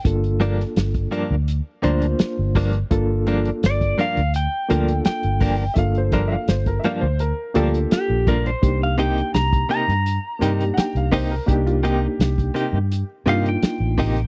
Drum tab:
HH |xxx-xxx-x-xxx-ox|x-xxxxxxx-xxxxo-|xxx-xxx-x-xxx-xx|x-xxxxxxx-xxxxo-|
SD |---oo-------o-o-|----o-------o---|----o-------o---|----o-------o---|
BD |o----o--------o-|o----o--------o-|o-o--o--------o-|o----o--------o-|

HH |xxx-xxx-x-xxx-ox|
SD |----o-------o---|
BD |o----o--------o-|